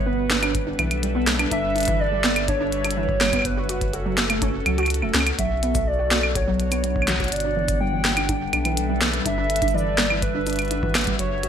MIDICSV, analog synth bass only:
0, 0, Header, 1, 2, 480
1, 0, Start_track
1, 0, Tempo, 483871
1, 1503, Time_signature, 4, 2, 24, 8
1, 11395, End_track
2, 0, Start_track
2, 0, Title_t, "Analog synth bass"
2, 0, Program_c, 0, 38
2, 0, Note_on_c, 0, 31, 97
2, 730, Note_off_c, 0, 31, 0
2, 783, Note_on_c, 0, 35, 85
2, 1450, Note_off_c, 0, 35, 0
2, 1503, Note_on_c, 0, 31, 97
2, 3369, Note_off_c, 0, 31, 0
2, 3423, Note_on_c, 0, 30, 99
2, 4569, Note_off_c, 0, 30, 0
2, 4623, Note_on_c, 0, 37, 95
2, 4983, Note_on_c, 0, 28, 84
2, 4998, Note_off_c, 0, 37, 0
2, 5070, Note_off_c, 0, 28, 0
2, 5103, Note_on_c, 0, 37, 93
2, 5276, Note_off_c, 0, 37, 0
2, 5343, Note_on_c, 0, 35, 99
2, 7209, Note_off_c, 0, 35, 0
2, 7263, Note_on_c, 0, 31, 99
2, 8409, Note_off_c, 0, 31, 0
2, 8463, Note_on_c, 0, 35, 84
2, 9129, Note_off_c, 0, 35, 0
2, 9183, Note_on_c, 0, 31, 99
2, 11049, Note_off_c, 0, 31, 0
2, 11103, Note_on_c, 0, 30, 98
2, 11395, Note_off_c, 0, 30, 0
2, 11395, End_track
0, 0, End_of_file